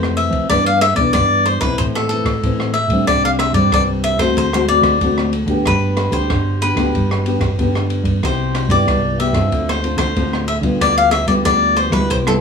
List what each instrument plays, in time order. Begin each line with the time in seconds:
Already playing: picked electric bass F2, nylon-string guitar C3 E3 A3 C4, cavaquinho C5
0.03 cross-stick
0.17 cavaquinho E5, ride
0.31 picked electric bass F3, kick, ride
0.50 picked electric bass G2, nylon-string guitar G2 E3 B3 D4, cavaquinho D5, kick, cross-stick, ride
0.66 cavaquinho F5
0.81 cavaquinho E5, cross-stick, ride
0.95 picked electric bass B1, nylon-string guitar E3 B3 D4, cavaquinho D5, kick, ride
1.13 picked electric bass G2, nylon-string guitar G2, cavaquinho D5, kick, cross-stick, ride
1.46 cavaquinho C5, ride
1.60 picked electric bass B1, nylon-string guitar E3 C4, cavaquinho B4, kick, cross-stick, ride
1.64 nylon-string guitar E4
1.78 picked electric bass A2, nylon-string guitar A2, cavaquinho C5, kick, ride
1.95 cavaquinho A4, cross-stick
2.09 nylon-string guitar E3 C4 E4, cavaquinho A4, ride
2.24 picked electric bass A2, kick, cross-stick, ride
2.43 picked electric bass A2, nylon-string guitar E3 C4 E4, kick, ride
2.60 cross-stick
2.74 cavaquinho E5, ride
2.88 picked electric bass A2, nylon-string guitar G3 C4, kick, ride
2.92 nylon-string guitar D4
3.07 picked electric bass C2, nylon-string guitar C3, cavaquinho D5, kick, cross-stick, ride
3.25 cavaquinho F5
3.39 cavaquinho E5, cross-stick, ride
3.53 picked electric bass G2, nylon-string guitar G3 C4 D4, cavaquinho D5, kick, ride
3.72 picked electric bass C2, nylon-string guitar G2, cavaquinho D5, kick, cross-stick, ride
4.04 cavaquinho E5, ride
4.17 picked electric bass C#2, nylon-string guitar A3 C4 F#4, cavaquinho C5, kick, cross-stick, ride
4.37 picked electric bass D2, nylon-string guitar D3, cavaquinho C5, kick, ride
4.53 nylon-string guitar A3 C4 F#4, cavaquinho C5, cross-stick
4.68 nylon-string guitar A3 C4 F#4, cavaquinho D5, ride
4.82 picked electric bass D2, kick, cross-stick, ride
5.01 picked electric bass D2, nylon-string guitar A2 A3 C4 F#4, kick, ride
5.18 cross-stick
5.33 ride
5.46 picked electric bass D2, nylon-string guitar B3 D4 G4, kick, ride
5.66 picked electric bass G1, nylon-string guitar G3, cavaquinho B4, kick, cross-stick, ride
5.97 cross-stick, ride
6.10 picked electric bass D2, nylon-string guitar D4 G4, cavaquinho C5, kick, ride
6.30 picked electric bass G1, nylon-string guitar D3, kick, cross-stick, ride
6.62 nylon-string guitar B3 D4 G4, cavaquinho B4, ride
6.75 picked electric bass D2, nylon-string guitar B3 D4 G4, kick, cross-stick, ride
6.95 picked electric bass G1, nylon-string guitar G3, kick, ride
7.11 cross-stick
7.26 nylon-string guitar B3 D4 G4, ride
7.39 picked electric bass G1, kick, cross-stick, ride
7.59 picked electric bass G1, nylon-string guitar D3 B3 D4 G4, kick, ride
7.75 cross-stick
7.90 ride
8.03 picked electric bass G2, kick, ride
8.23 picked electric bass C2, nylon-string guitar C3 E4 G4, cavaquinho C5, kick, cross-stick, ride
8.55 cross-stick, ride
8.68 picked electric bass G2, nylon-string guitar B3 E4 G4, cavaquinho D5, kick, ride
8.88 picked electric bass C2, nylon-string guitar G2, kick, cross-stick, ride
9.20 nylon-string guitar B3 E4 G4, cavaquinho E5, ride
9.32 picked electric bass G2, nylon-string guitar C4 F4 A4, kick, cross-stick, ride
9.52 picked electric bass D2, nylon-string guitar D3, kick, ride
9.69 cavaquinho C5, cross-stick
9.84 nylon-string guitar C4 F4 A4, ride
9.97 picked electric bass D2, cavaquinho C5, kick, cross-stick, ride
10.16 picked electric bass D2, nylon-string guitar A2 C4 F4 A4, kick, ride
10.33 cross-stick
10.48 cavaquinho E5, ride
10.61 picked electric bass D3, nylon-string guitar G3 B3 F4, kick, ride
10.80 picked electric bass D2, nylon-string guitar D3, cavaquinho D5, kick, cross-stick, ride
10.98 cavaquinho F5
11.11 cavaquinho E5, cross-stick, ride
11.26 picked electric bass D2, nylon-string guitar G3 B3 F4, cavaquinho D5, kick, ride
11.45 picked electric bass D2, nylon-string guitar D3, cavaquinho D5, kick, cross-stick, ride
11.77 cavaquinho C5, ride
11.90 picked electric bass D2, nylon-string guitar G3 B3 E4, cavaquinho B4, kick, cross-stick, ride
12.10 picked electric bass C2, nylon-string guitar C3, cavaquinho C5, kick, ride
12.27 nylon-string guitar G3 B3 E4, cavaquinho A4, cross-stick